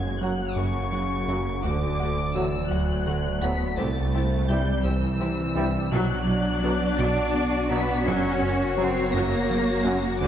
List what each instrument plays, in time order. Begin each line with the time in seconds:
Already playing: sub bass F#1, double bass section F#2, analog synth pad F#3 A#3 F#4 F#5, cello section G#3, violin section G#6
0.19 trombone section F#2 F#3, analog synth bass F#3, cello section F#3, french horn section A#3 F#4, viola section A#3 F#4, violin section F#4 F#5 F#6
0.55 analog synth bass F#2, double bass section F#2, cello section C#3, viola section A#3 F#4, violin section F#4 F#5 C#6
0.92 analog synth bass F#3, viola section A#3 F#4, violin section F#4 F#5
1.27 trombone section F#2 F#3, analog synth bass F#2, french horn section A#3 F#4, viola section A#3 F#4, violin section F#4 F#5
1.62 sub bass D1, analog synth bass D2, double bass section D2, cello section D3, analog synth pad A3 D5, viola section A3 F#4, violin section F#4 F#5 D6
1.99 analog synth bass D2, viola section A3 F#4, violin section F#4 F#5
2.34 trombone section A2 F#3, analog synth bass D3, cello section E3, french horn section A3 F#4, viola section A3 F#4, violin section F#4 F#5 E6
2.70 analog synth bass D2, double bass section D2, cello section F#3, viola section A3 F#4, violin section F#4 F#5 F#6
3.06 analog synth bass D3, viola section A3 F#4, violin section F#4 F#5
3.41 analog synth bass D2, trombone section A2 F#3, french horn section A3 F#4, viola section A3, cello section B3, violin section F#4 F#5 B6
3.45 viola section F#4
3.77 analog synth bass C2, double bass section C2, sub bass C2, analog synth pad G3 C4 E4 C5, cello section A3, viola section C4 E4, violin section G4 C5 A6
4.14 analog synth bass C2, viola section C4 E4, violin section G4 C5
4.48 trombone section G2 G3, analog synth bass C3, cello section G3, french horn section C4 E4, viola section C4 E4, violin section G4 C5 G6
4.84 analog synth bass C2, double bass section C2, cello section E3, viola section C4 E4, violin section G4 C5 E6
5.20 analog synth bass C3, viola section C4 E4, violin section G4 C5
5.55 analog synth bass C2, trombone section G2 G3, french horn section C4 E4, viola section C4 E4, violin section G4 C5
5.91 double bass section B1, sub bass B1, analog synth bass B2, cello section F#3, analog synth pad F#3 B3 D4 D5, viola section F#3 D4, violin section F#4 D5 F#6
6.27 analog synth bass B2
6.63 double bass section B1, trombone section B2 F#3, viola section D3, analog synth bass B3, french horn section B3 D4
6.98 double bass section B1, analog synth bass B2, viola section F#3, cello section D4, violin section D7
7.35 double bass section B1, viola section D3, analog synth bass B3
7.70 analog synth bass B2, trombone section B2 F#3, cello section B3, french horn section B3 D4, violin section B6
8.05 sub bass F#1, analog synth bass F#2, double bass section F#2, analog synth pad C#3 F#4 A#4, viola section F#3 F#4, cello section C#4, violin section C#5 C#7
8.42 analog synth bass F#2
8.77 trombone section F#2 F#3, double bass section F#2, viola section C#3, analog synth bass F#3, cello section C4, french horn section C#4 F#4, violin section C7
9.12 analog synth bass F#2, double bass section F#2, viola section F#3, cello section A#3, violin section A#6
9.50 double bass section F#2, viola section C#3, analog synth bass F#3
9.83 trombone section F#2 F#3, analog synth bass F#2, french horn section C#4 F#4
10.19 sub bass D1, analog synth bass D2, double bass section D2, cello section D3, analog synth pad A3 D5, viola section A3, violin section F#4 D5 D6